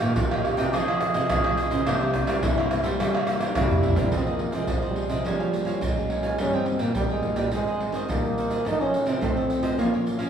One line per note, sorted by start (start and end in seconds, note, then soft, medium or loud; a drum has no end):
0.00 0.14 A#2 medium
0.00 0.14 D#3 medium
0.00 0.40 A#3 medium
0.00 0.40 D#4 medium
0.00 0.17 G4 loud
0.00 0.40 G4 medium
0.00 0.15 A#4 medium
0.00 0.15 D#5 medium
0.00 0.15 G5 medium
0.00 pandeiro medium
0.00 tamborim medium
0.00 shaker medium
0.15 0.71 A#2 medium
0.15 0.53 D#3 loud
0.15 0.46 F4 medium
0.15 0.30 G4 soft
0.15 0.30 A#4 soft
0.15 0.30 D#5 medium
0.15 0.30 G5 medium
0.15 pandeiro medium
0.15 shaker medium
0.15 surdo loud
0.31 0.58 A#4 medium
0.31 0.57 D#5 medium
0.31 0.56 G5 medium
0.31 pandeiro soft
0.31 tamborim medium
0.31 shaker soft
0.44 0.68 A#3 medium
0.44 0.69 D#4 medium
0.44 0.75 G4 medium
0.44 0.69 G4 medium
0.44 pandeiro medium
0.44 tamborim medium
0.57 0.70 C3 loud
0.57 0.72 A#4 medium
0.57 0.72 D#5 medium
0.57 0.71 G5 medium
0.57 pandeiro medium
0.57 shaker medium
0.73 1.09 F3 medium
0.73 1.27 F3 medium
0.73 1.11 C4 medium
0.73 1.11 D#4 medium
0.73 0.86 F4 medium
0.73 1.29 G#4 loud
0.73 0.87 G#4 medium
0.73 1.12 G#4 medium
0.73 0.87 C5 medium
0.73 0.87 D#5 medium
0.73 pandeiro medium
0.73 tamborim medium
0.73 shaker medium
0.73 surdo medium
0.88 1.00 G#4 medium
0.88 1.00 C5 medium
0.88 1.01 D#5 medium
0.88 pandeiro soft
0.88 tamborim medium
0.88 shaker soft
1.01 muted cavaquinho stroke soft
1.01 pandeiro medium
1.01 tamborim medium
1.01 shaker medium
1.14 1.27 C3 medium
1.14 1.53 C4 medium
1.14 1.53 D#4 medium
1.14 1.54 G#4 medium
1.14 1.56 G#4 medium
1.14 1.57 C5 medium
1.14 1.56 D#5 medium
1.14 pandeiro medium
1.14 shaker medium
1.29 1.84 C3 medium
1.29 1.66 F3 loud
1.29 1.88 G#4 loud
1.29 pandeiro medium
1.29 tamborim medium
1.29 shaker medium
1.29 surdo loud
1.44 pandeiro soft
1.44 tamborim medium
1.44 shaker soft
1.57 1.81 C4 medium
1.57 1.81 D#4 medium
1.57 1.71 F4 medium
1.57 1.71 G#4 soft
1.57 1.82 G#4 medium
1.57 1.70 C5 medium
1.57 1.69 D#5 medium
1.57 pandeiro medium
1.57 shaker medium
1.70 1.84 C#3 medium
1.70 1.85 G#4 medium
1.70 1.85 C5 medium
1.70 1.84 D#5 medium
1.70 pandeiro medium
1.70 shaker medium
1.86 2.40 C3 medium
1.86 2.23 C3 loud
1.86 2.10 G3 medium
1.86 2.10 A#3 medium
1.86 1.99 E4 medium
1.86 2.11 E4 medium
1.86 2.38 G4 medium
1.86 2.00 A#4 soft
1.86 2.00 C5 medium
1.86 1.99 E5 medium
1.86 pandeiro medium
1.86 tamborim medium
1.86 shaker medium
1.86 surdo medium
2.00 2.12 A#4 medium
2.00 2.13 C5 medium
2.00 2.13 E5 medium
2.00 pandeiro soft
2.00 shaker soft
2.13 2.38 G3 medium
2.13 2.38 A#3 medium
2.13 2.39 E4 medium
2.13 muted cavaquinho stroke soft
2.13 pandeiro medium
2.13 tamborim medium
2.13 shaker medium
2.13 surdo medium
2.27 2.40 G3 medium
2.27 2.42 A#4 medium
2.27 2.41 C5 medium
2.27 2.41 E5 medium
2.27 pandeiro medium
2.27 tamborim medium
2.27 shaker medium
2.37 2.44 D#4 medium
2.42 2.97 G2 medium
2.42 2.79 C3 loud
2.42 2.66 G3 medium
2.42 2.66 A#3 medium
2.42 2.56 E4 medium
2.42 2.67 E4 medium
2.42 2.83 E4 medium
2.42 2.56 A#4 medium
2.42 2.56 C5 medium
2.42 2.57 E5 medium
2.42 pandeiro medium
2.42 shaker medium
2.42 surdo loud
2.58 2.84 A#4 medium
2.58 2.83 C5 medium
2.58 2.82 E5 medium
2.58 pandeiro soft
2.58 tamborim medium
2.58 shaker soft
2.70 2.79 G3 medium
2.70 2.79 A#3 medium
2.70 2.80 E4 medium
2.70 pandeiro medium
2.70 tamborim medium
2.70 shaker medium
2.83 3.22 G3 medium
2.83 2.96 G3 medium
2.83 3.22 A#3 medium
2.83 3.22 E4 medium
2.83 2.98 A#4 medium
2.83 2.98 C5 medium
2.83 2.97 E5 medium
2.83 pandeiro medium
2.83 shaker medium
2.99 3.53 C3 medium
2.99 3.36 G3 medium
2.99 3.12 E4 soft
2.99 3.26 G4 medium
2.99 3.13 A#4 soft
2.99 3.13 C5 medium
2.99 3.12 E5 medium
2.99 pandeiro medium
2.99 tamborim medium
2.99 shaker medium
2.99 surdo medium
3.14 3.26 A#4 medium
3.14 3.27 C5 medium
3.14 3.27 E5 medium
3.14 pandeiro soft
3.14 tamborim medium
3.14 shaker soft
3.26 3.65 G3 medium
3.26 3.65 A#3 medium
3.26 3.65 E4 medium
3.26 muted cavaquinho stroke soft
3.26 pandeiro medium
3.26 tamborim medium
3.26 shaker medium
3.40 3.53 G3 medium
3.40 3.82 A#4 medium
3.40 3.83 C5 medium
3.40 3.83 E5 medium
3.40 pandeiro medium
3.40 tamborim medium
3.40 shaker medium
3.49 3.57 D#4 medium
3.55 4.09 G2 medium
3.55 3.92 C3 medium
3.55 4.16 G3 medium
3.55 4.12 E4 loud
3.55 pandeiro medium
3.55 tamborim loud
3.55 shaker medium
3.55 surdo loud
3.69 4.07 G3 medium
3.69 4.07 A#3 medium
3.69 4.08 E4 medium
3.69 surdo medium
3.69 pandeiro soft
3.69 shaker soft
3.82 3.96 E4 soft
3.82 3.96 A#4 medium
3.82 3.95 C5 soft
3.82 3.94 E5 soft
3.82 pandeiro medium
3.82 surdo loud
3.95 4.10 C3 medium
3.95 4.11 A#4 medium
3.95 4.10 C5 medium
3.95 4.10 E5 medium
3.95 pandeiro medium
3.95 shaker medium
3.95 surdo medium
4.11 4.66 F3 medium
4.11 4.49 F3 medium
4.11 4.36 C4 medium
4.11 4.31 C4 medium
4.11 4.36 D#4 medium
4.11 4.25 F4 soft
4.11 4.36 G#4 medium
4.11 4.26 G#4 soft
4.11 4.26 C5 soft
4.11 4.25 D#5 soft
4.11 pandeiro medium
4.11 shaker medium
4.11 surdo medium
4.26 4.56 A#3 medium
4.26 4.39 G#4 soft
4.26 4.39 C5 soft
4.26 4.40 D#5 medium
4.26 pandeiro soft
4.26 shaker soft
4.39 4.92 C4 soft
4.39 4.92 D#4 soft
4.39 4.92 G#4 medium
4.39 muted cavaquinho stroke soft
4.39 pandeiro medium
4.52 4.66 C3 medium
4.52 4.67 G#4 soft
4.52 4.67 C5 soft
4.52 4.67 D#5 medium
4.52 pandeiro medium
4.52 shaker medium
4.56 4.69 G#3 medium
4.67 5.22 C3 medium
4.67 5.05 F3 medium
4.67 4.83 F3 medium
4.67 4.81 F4 soft
4.67 4.82 G#4 soft
4.67 4.82 C5 medium
4.67 4.81 D#5 soft
4.67 pandeiro medium
4.67 shaker medium
4.67 surdo loud
4.82 5.11 G#4 soft
4.82 5.10 C5 medium
4.82 5.09 D#5 medium
4.82 pandeiro soft
4.82 shaker soft
4.87 5.14 G3 medium
4.95 5.14 C4 medium
4.95 5.15 D#4 medium
4.95 5.15 G#4 medium
4.95 pandeiro medium
5.09 5.22 C3 medium
5.09 5.26 F3 medium
5.09 5.25 G#4 medium
5.09 5.24 C5 medium
5.09 5.24 D#5 medium
5.09 pandeiro medium
5.09 shaker medium
5.24 5.79 F3 medium
5.24 5.61 F3 medium
5.24 5.85 G3 medium
5.24 5.49 A#3 medium
5.24 5.49 C#4 medium
5.24 5.49 G#4 medium
5.24 5.39 A#4 soft
5.24 5.39 C#5 soft
5.24 5.39 F5 soft
5.24 5.38 G#5 soft
5.24 pandeiro medium
5.24 shaker medium
5.24 surdo medium
5.39 5.52 C#5 medium
5.39 5.51 F5 medium
5.39 5.52 G#5 medium
5.39 pandeiro soft
5.39 shaker soft
5.52 5.80 A#3 medium
5.52 5.80 C#4 soft
5.52 5.81 G#4 soft
5.52 muted cavaquinho stroke soft
5.52 pandeiro medium
5.52 shaker medium
5.65 5.78 F3 medium
5.65 6.09 C#5 soft
5.65 6.09 F5 medium
5.65 6.08 G#5 medium
5.65 pandeiro medium
5.65 shaker medium
5.81 6.30 F#3 medium
5.81 6.42 G#3 medium
5.81 pandeiro medium
5.81 shaker medium
5.81 surdo loud
5.97 6.35 A#3 medium
5.97 6.35 C#4 medium
5.97 6.35 G#4 medium
5.97 pandeiro soft
5.97 shaker soft
6.10 6.23 A#4 soft
6.10 6.24 C#5 soft
6.10 6.23 F5 soft
6.10 6.22 G#5 medium
6.10 pandeiro medium
6.23 6.38 C#5 soft
6.23 6.38 F5 medium
6.23 6.37 G#5 medium
6.23 pandeiro medium
6.23 shaker medium
6.38 6.93 G2 medium
6.38 6.56 D#3 soft
6.38 6.75 G3 medium
6.38 6.56 A#3 medium
6.38 6.56 C#4 loud
6.38 6.56 D#4 medium
6.38 6.52 G4 soft
6.38 6.53 A#4 soft
6.38 6.53 D#5 soft
6.38 6.53 G5 soft
6.38 pandeiro medium
6.38 shaker medium
6.38 surdo medium
6.53 6.82 C4 medium
6.53 6.66 A#4 medium
6.53 6.67 D#5 medium
6.53 6.67 G5 medium
6.53 pandeiro soft
6.53 shaker soft
6.66 7.04 D#3 medium
6.66 7.04 A#3 medium
6.66 7.04 D#4 medium
6.66 muted cavaquinho stroke soft
6.66 pandeiro medium
6.79 6.92 A#2 medium
6.79 6.95 A#3 medium
6.79 6.95 A#4 soft
6.79 6.94 D#5 medium
6.79 6.94 G5 medium
6.79 pandeiro medium
6.79 shaker medium
6.95 7.50 G2 medium
6.95 7.32 G3 medium
6.95 7.02 G3 medium
6.95 7.09 G4 soft
6.95 7.09 A#4 medium
6.95 7.09 D#5 soft
6.95 7.10 G5 medium
6.95 pandeiro medium
6.95 shaker medium
6.95 surdo loud
7.09 7.39 G#3 medium
7.09 7.38 A#4 soft
7.09 7.37 D#5 medium
7.09 7.36 G5 medium
7.09 pandeiro soft
7.09 shaker soft
7.23 7.42 D#3 medium
7.23 7.42 A#3 medium
7.23 7.43 D#4 medium
7.23 pandeiro medium
7.23 surdo medium
7.36 7.49 A#2 medium
7.36 7.52 G3 medium
7.36 7.51 A#4 medium
7.36 7.51 D#5 medium
7.36 7.50 G5 medium
7.36 pandeiro medium
7.36 shaker medium
7.51 8.07 G#2 medium
7.51 7.70 D#3 soft
7.51 7.88 G#3 medium
7.51 8.05 G#3 medium
7.51 7.70 G#3 medium
7.51 7.70 C4 medium
7.51 7.66 D#4 soft
7.51 7.66 G#4 medium
7.51 7.66 C5 medium
7.51 7.67 D#5 medium
7.51 pandeiro medium
7.51 shaker medium
7.51 surdo soft
7.67 7.80 G#4 medium
7.67 7.81 C5 medium
7.67 7.80 D#5 medium
7.67 pandeiro soft
7.67 shaker soft
7.80 8.07 D#3 soft
7.80 8.07 G#3 medium
7.80 8.07 C4 medium
7.80 muted cavaquinho stroke soft
7.80 pandeiro medium
7.92 8.05 D#3 medium
7.92 8.37 C5 medium
7.92 8.36 D#5 medium
7.92 pandeiro medium
7.92 shaker medium
7.97 8.37 G#4 soft
8.08 8.22 D#3 medium
8.08 8.57 G3 medium
8.08 8.68 A#3 medium
8.08 pandeiro medium
8.08 shaker medium
8.08 surdo loud
8.24 8.61 D#3 medium
8.24 8.62 C4 medium
8.24 pandeiro soft
8.24 shaker soft
8.38 8.51 D#4 soft
8.38 8.51 G#4 soft
8.38 8.50 C5 soft
8.38 8.49 D#5 soft
8.38 pandeiro soft
8.38 shaker medium
8.50 8.65 G#4 medium
8.50 8.64 C5 medium
8.50 8.64 D#5 medium
8.50 pandeiro medium
8.50 shaker medium
8.65 9.20 A2 medium
8.65 8.92 F3 medium
8.65 9.01 A3 medium
8.65 8.92 C4 medium
8.65 8.93 D#4 medium
8.65 8.83 D#4 loud
8.65 8.79 F4 soft
8.65 8.79 A4 soft
8.65 8.79 C5 medium
8.65 8.80 D#5 soft
8.65 pandeiro medium
8.65 shaker medium
8.65 surdo medium
8.81 9.10 C#4 loud
8.81 8.93 A4 medium
8.81 8.93 C5 medium
8.81 8.93 D#5 medium
8.81 pandeiro soft
8.81 shaker soft
8.93 muted cavaquinho stroke soft
8.93 pandeiro medium
8.93 shaker medium
9.06 9.19 C3 medium
9.06 9.45 F3 medium
9.06 9.45 C4 medium
9.06 9.22 C4 medium
9.06 9.46 D#4 medium
9.06 9.21 A4 medium
9.06 9.21 C5 medium
9.06 9.20 D#5 medium
9.06 pandeiro medium
9.06 shaker medium
9.21 9.76 A2 medium
9.21 9.58 A3 medium
9.21 9.81 C4 medium
9.21 9.35 F4 soft
9.21 9.35 A4 soft
9.21 9.36 C5 soft
9.21 9.35 D#5 soft
9.21 pandeiro medium
9.21 shaker medium
9.21 surdo medium
9.36 9.64 A4 medium
9.36 9.63 C5 medium
9.36 9.62 D#5 medium
9.36 pandeiro soft
9.36 shaker soft
9.50 9.67 F3 soft
9.50 9.67 C4 medium
9.50 9.68 D#4 medium
9.50 pandeiro medium
9.50 shaker medium
9.63 9.76 F3 medium
9.63 9.78 A4 medium
9.63 9.77 C5 medium
9.63 9.77 D#5 medium
9.63 pandeiro medium
9.63 shaker medium
9.78 10.30 A#2 medium
9.78 10.18 F3 medium
9.78 10.14 A#3 medium
9.78 10.18 A#3 medium
9.78 10.18 C#4 medium
9.78 9.92 F4 soft
9.78 9.94 F4 medium
9.78 9.92 A#4 soft
9.78 9.92 C#5 medium
9.78 9.92 F5 soft
9.78 pandeiro medium
9.78 shaker medium
9.78 surdo medium
9.93 10.05 A#4 soft
9.93 10.06 C#5 medium
9.93 10.06 F5 medium
9.93 pandeiro soft
9.93 shaker soft
10.06 muted cavaquinho stroke soft
10.06 pandeiro medium
10.06 shaker medium
10.19 10.30 F3 medium
10.19 10.30 A#3 medium
10.19 10.30 C#4 medium
10.19 10.30 A#4 soft
10.19 10.30 C#5 medium
10.19 10.30 F5 medium
10.19 pandeiro medium
10.19 shaker medium